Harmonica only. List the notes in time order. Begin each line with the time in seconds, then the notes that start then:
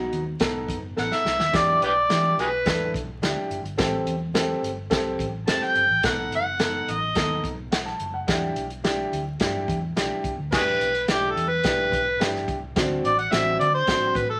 1.00 F#5
1.14 E5
1.56 D5
1.83 G4 B4 D5
2.40 F#4 G#4 B4
5.49 A5
5.64 G5
6.06 F#5
6.36 F#5
6.91 D#5
10.54 F#4 G#4 B4
11.11 G4
11.31 A4
11.49 B4
13.06 D5
13.19 F#5
13.33 E5
13.60 D5
13.75 C5
14.16 B4
14.30 A4